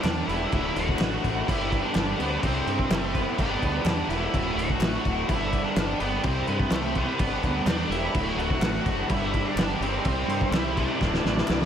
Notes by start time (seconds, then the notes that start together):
Already playing: G2 D3 B3 D4 G4
0.02 E2 G3 B3 D4, snare, clap, crash
0.06 D4 G4
0.27 E1 G3 B3 D4 E4 G4, crash
0.52 D1 D2 A2 D3 A3 F#4, kick, crash
0.56 A3 D4
0.75 D1 F#4, crash
0.88 kick
0.99 A1 A2 D3 A3 F#4, snare, clap, crash
1.24 A1 D3 A3 F#4, kick, crash
1.47 G1 G2 D3 G3 B3 D4 E4 G4, kick, crash
1.72 kick, crash
1.83 D4
1.95 G1 G3 B3 D4 G4, snare, clap, crash
2.18 D2 G3 B3 D4 G4, crash
2.42 C2 C3 G3 C4 E4 G4 C5, kick, crash
2.46 C4 G4
2.66 G2, crash
2.79 kick
2.90 F#1 A3 C4 E4 G4 C5, snare, clap, crash
3.14 B3 C4 E4 G4 C5, kick, crash
3.37 G1 G2 D3 G3 B3 D4 G4, kick, crash
3.62 D2, kick, crash
3.85 E2 G3 B3 D4 G4, snare, clap, crash
4.08 E1 G3 B3 D4 E4 G4, crash
4.32 D1 D2 A2 D3 A3 D4 F#4, kick, crash
4.55 D1 F#4, crash
4.70 kick
4.79 A1 A2 D3 A3 F#4, snare, clap, crash
5.05 D1 D3 A3 F#4, kick, crash
5.28 G1 G2 D3 G3 B3 D4 E4 G4, kick, crash
5.53 kick, crash
5.64 D4
5.76 G1 G3 B3 D4 G4, snare, clap, crash
6.00 G1 G3 B3 D4 G4, crash
6.23 C2 C3 G3 C4 E4 G4 C5, kick, crash
6.47 G2 B3, crash
6.60 kick
6.70 C2 A3 C4 E4 G4, snare, clap, crash
6.74 C5
6.95 B3 C4 E4 G4 C5, kick, crash
7.19 G1 G2 D3 G3 B3 D4 G4, kick, crash
7.43 D2, kick, crash
7.66 E2 G3 B3 D4 G4, snare, clap, crash
7.89 E1 G3 B3 D4 E4 G4, crash
8.13 D1 D2 A2 D3 A3 D4 F#4, kick, crash
8.36 D1 F#4, crash
8.50 kick
8.60 A1 A2 D3 A3 F#4, snare, clap, crash
8.85 F#1 D3 A3 F#4, kick, crash
9.08 G1 G2 D3 G3 B3 D4 E4 G4, kick, crash
9.34 kick, crash
9.45 D4
9.55 G1 G3 B3 D4 G4, snare, clap, crash
9.80 G1 G3 B3 C4 D4 G4, crash
10.04 C2 C3 G3 C4 E4 G4 C5, kick, crash
10.28 G2, crash
10.41 kick
10.51 C2 C4 E4 G4 C5, snare, clap, crash
10.75 C4 D4 E4 G4 C5, kick, crash
11.00 D1 D2 A2 D3 A3 D4 E4 F#4, kick, snare
11.14 snare
11.24 A1, snare
11.37 snare
11.47 C2 A2 D3 A3 E4, snare, clap
11.62 snare